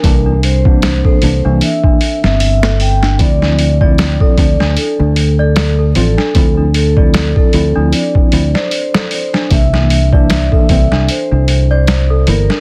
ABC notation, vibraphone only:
X:1
M:4/4
L:1/16
Q:"Swing 16ths" 1/4=76
K:Dm
V:1 name="Vibraphone"
B2 c3 c3 e3 e3 g2 | d3 d2 d3 A3 A3 A2- | A2 A3 A3 d3 c3 c2 | e3 e2 e3 c3 c3 B2 |]